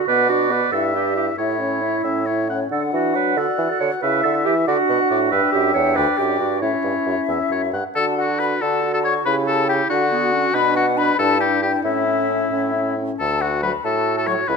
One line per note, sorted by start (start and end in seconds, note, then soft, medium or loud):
0.08 0.65 B2 medium
0.08 0.30 B3 soft
0.08 0.29 B4 medium
0.08 0.74 D5 medium
0.08 0.31 F#5 soft
0.29 0.52 D4 soft
0.29 0.53 F#4 medium
0.29 0.53 D5 soft
0.50 0.72 B3 soft
0.50 0.72 B4 medium
0.50 0.73 F#5 soft
0.72 1.30 G2 medium
0.72 0.95 E4 soft
0.72 0.82 A4 medium
0.72 1.38 E5 medium
0.72 0.96 E5 soft
0.94 1.17 D4 soft
0.94 1.16 G4 medium
0.94 1.18 D5 soft
1.16 1.37 E4 soft
1.16 1.26 G4 medium
1.16 1.38 E5 soft
1.37 1.96 A2 soft
1.37 1.61 E4 soft
1.37 2.47 E4 medium
1.37 1.99 C#5 soft
1.37 1.62 E5 soft
1.59 1.83 C#4 soft
1.59 1.83 C#5 soft
1.82 2.05 E4 soft
1.82 2.06 E5 soft
2.03 2.63 A2 soft
2.03 2.26 C#4 soft
2.03 2.26 C#5 soft
2.03 2.28 E5 soft
2.26 2.51 E4 soft
2.26 2.49 C#5 soft
2.26 2.50 E5 soft
2.48 2.70 C#4 soft
2.48 2.70 C#5 soft
2.48 2.60 F#5 soft
2.71 2.92 D3 soft
2.71 3.39 D4 soft
2.71 2.81 A4 medium
2.71 3.39 F#5 soft
2.93 3.16 E3 medium
2.93 3.14 F#4 medium
3.15 3.36 F#3 soft
3.15 3.39 B4 medium
3.37 3.46 D3 medium
3.37 4.02 F#4 soft
3.37 3.70 A4 medium
3.37 3.79 D5 soft
3.37 3.98 F#5 medium
3.58 3.68 E3 soft
3.71 3.80 A4 medium
3.80 3.90 D3 soft
3.80 3.90 C#5 medium
4.02 4.24 C#3 medium
4.02 4.69 E4 soft
4.02 4.23 B4 medium
4.02 4.69 E5 soft
4.02 4.66 E5 medium
4.23 4.48 D3 medium
4.23 4.33 A4 medium
4.45 4.67 E3 medium
4.45 4.55 G4 medium
4.67 4.77 D3 medium
4.67 6.63 D4 medium
4.67 5.30 F#4 medium
4.67 4.77 D5 medium
4.67 5.34 F#5 soft
4.89 4.99 B2 medium
4.89 5.10 F#5 medium
5.10 5.31 A2 medium
5.10 5.20 D5 soft
5.31 5.41 G2 medium
5.31 5.52 B4 medium
5.31 5.98 E5 medium
5.31 6.61 G5 soft
5.52 5.74 F#2 medium
5.52 5.73 G4 medium
5.74 5.96 E2 soft
5.74 5.97 C#5 medium
5.96 6.07 D2 medium
5.96 6.19 B4 medium
5.96 6.61 D5 medium
6.18 6.39 F#2 soft
6.18 6.39 G4 medium
6.39 6.61 G2 soft
6.39 6.61 F#4 medium
6.61 6.72 A2 soft
6.61 7.73 C#4 soft
6.61 7.71 E4 medium
6.61 7.23 C#5 soft
6.61 7.71 E5 soft
6.84 6.94 G2 soft
7.06 7.16 F#2 soft
7.28 7.38 E2 soft
7.28 7.49 E5 soft
7.51 7.73 F#2 soft
7.51 7.62 C#5 soft
7.73 7.83 G2 soft
7.73 7.84 F#5 soft
7.95 8.54 D3 soft
7.95 8.63 D4 soft
7.95 8.18 F#4 soft
7.95 8.06 A4 medium
7.95 8.16 A5 medium
8.18 8.39 F#4 soft
8.18 8.41 F#4 medium
8.18 8.24 F#5 soft
8.39 8.60 F#4 soft
8.39 8.63 B4 medium
8.39 8.46 B5 medium
8.61 9.18 D3 medium
8.61 8.82 F#4 soft
8.61 9.26 F#4 medium
8.61 8.93 A4 medium
8.61 8.93 A5 soft
8.82 9.04 F#4 soft
8.93 8.99 A4 medium
8.93 9.06 A5 medium
9.04 9.25 F#4 soft
9.04 9.14 C#5 medium
9.04 9.26 C#6 medium
9.26 9.82 C#3 medium
9.26 9.92 E4 medium
9.26 9.47 G4 soft
9.26 9.35 B4 medium
9.26 9.32 B5 medium
9.47 9.68 G4 soft
9.47 9.68 A4 medium
9.47 9.67 A5 medium
9.68 9.89 G4 medium
9.68 9.90 G4 soft
9.68 9.74 G5 medium
9.90 10.47 D3 medium
9.90 10.11 D4 medium
9.90 10.56 F#4 medium
9.90 10.11 F#4 soft
9.90 10.55 F#5 medium
10.11 10.34 B3 medium
10.11 10.33 F#4 medium
10.33 10.53 C#4 medium
10.33 10.54 F#4 soft
10.54 11.11 B2 medium
10.54 11.17 D4 medium
10.54 10.76 D4 medium
10.54 10.76 B4 medium
10.54 10.77 B5 medium
10.76 10.97 D4 soft
10.76 10.86 F#4 medium
10.76 10.99 F#5 medium
10.97 11.18 D4 soft
10.97 11.18 B4 medium
10.97 11.21 B5 medium
11.19 11.77 G2 medium
11.19 11.40 D4 soft
11.19 11.87 E4 medium
11.19 11.40 A4 medium
11.19 11.43 A5 medium
11.40 11.62 D4 soft
11.40 11.62 G4 medium
11.40 11.63 G5 medium
11.62 11.84 D4 soft
11.62 11.72 G4 medium
11.62 11.84 G5 medium
11.84 12.44 A2 medium
11.84 12.07 C#4 soft
11.84 12.86 C#4 soft
11.84 12.95 E4 medium
11.84 12.95 E5 medium
12.08 12.29 C#4 soft
12.30 12.52 C#4 soft
12.52 13.12 A2 soft
12.52 12.74 C#4 soft
12.76 12.97 C#4 soft
12.98 13.19 C#4 soft
13.19 13.74 D2 soft
13.19 13.43 A4 medium
13.19 13.42 A5 medium
13.40 13.62 F#4 medium
13.40 13.62 F#5 soft
13.63 13.71 F#3 soft
13.63 13.72 B4 medium
13.63 13.86 B5 medium
13.84 14.38 A2 soft
13.84 14.45 F#4 medium
13.84 14.16 A4 medium
13.84 14.16 A5 soft
14.16 14.29 A4 medium
14.16 14.21 A5 medium
14.27 14.35 F#3 soft
14.27 14.50 C#5 medium
14.27 14.33 C#6 medium
14.48 14.57 C#2 medium
14.48 14.57 E4 medium
14.48 14.57 B4 medium
14.48 14.55 B5 medium